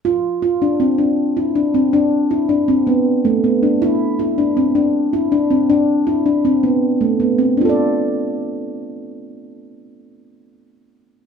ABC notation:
X:1
M:5/4
L:1/8
Q:1/4=160
K:Ddor
V:1 name="Handpan"
F2 F D C D2 E D C | D2 E D C B,2 A, B, D | E2 E D C D2 E D C | D2 E D C B,2 A, B, C |
[DFAd]8- [DFAd]2- | [DFAd]8- [DFAd]2 |]